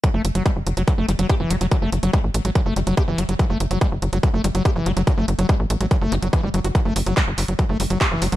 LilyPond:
<<
  \new Staff \with { instrumentName = "Acid bass" } { \clef bass \time 4/4 \key fis \phrygian \tempo 4 = 143 fis16 a16 r16 fis16 g16 r8 fis16 fis16 a16 g16 fis16 g'16 e16 g16 fis16 | fis16 a16 r16 fis16 r8. fis16 fis16 a16 g16 fis16 g'16 e16 g16 fis16 | fis16 a16 r16 fis16 g16 r8 fis16 fis16 a16 g16 fis16 g'16 e16 g16 fis16 | fis16 a16 r16 fis16 g16 r8 fis16 fis16 a16 fis'16 fis16 e16 g16 fis16 fis'16 |
fis16 a16 r16 fis16 g16 r8 fis16 fis16 a16 g16 fis16 g'16 e16 g16 fis16 | }
  \new Staff \with { instrumentName = "Analog synth bass" } { \clef bass \time 4/4 \key fis \phrygian r16 fis,,16 fis,,16 fis,,16 r16 fis,,16 fis,,16 fis,,16 r16 fis,,16 fis,,16 fis,,16 r16 fis,,16 fis,,16 fis,,16 | r16 fis,,16 fis,,16 fis,,16 r16 a,,16 a,,16 a,,16 r16 fis,,16 fis,,16 fis,,16 r16 fis,,16 fis,,16 fis,,16 | r16 fis,,16 fis,,16 fis,,16 r16 fis,,16 fis,,16 fis,,16 r16 fis,,16 fis,,16 fis,,16 r16 fis,,16 fis,,16 fis,,16 | r16 fis,,16 fis,,16 fis,,16 r16 a,,16 a,,16 a,,16 r16 fis,,16 fis,,16 fis,,16 r16 fis,,16 fis,,16 fis,,16 |
r16 fis,,16 fis,,16 fis,,16 r16 fis,,16 fis,,16 fis,,16 r16 fis,,16 fis,,16 fis,,16 r16 fis,,16 fis,,16 fis,,16 | }
  \new DrumStaff \with { instrumentName = "Drums" } \drummode { \time 4/4 <hh bd>8 hh16 hh16 <hh bd>8 hh16 hh16 <hh bd>8 hh16 hh16 <hh bd>8 hh16 hh16 | <hh bd>8 hh16 hh16 <hh bd>8 hh16 hh16 <hh bd>8 hh16 hh16 <hh bd>8 hh16 hh16 | <hh bd>8 hh16 hh16 <hh bd>8 hh16 hh16 <hh bd>8 hh16 hh16 <hh bd>8 hh16 hh16 | <hh bd>8 hh16 hh16 <hh bd>8 hh16 hh16 <hh bd>8 hh16 hh16 <hh bd>8 hh16 hh16 |
<hh bd>8 hho16 hh16 <hc hh bd>8 <hc hho>16 hh16 <hh bd>8 hho16 hh16 <hc hh bd>8 hho16 hh16 | }
>>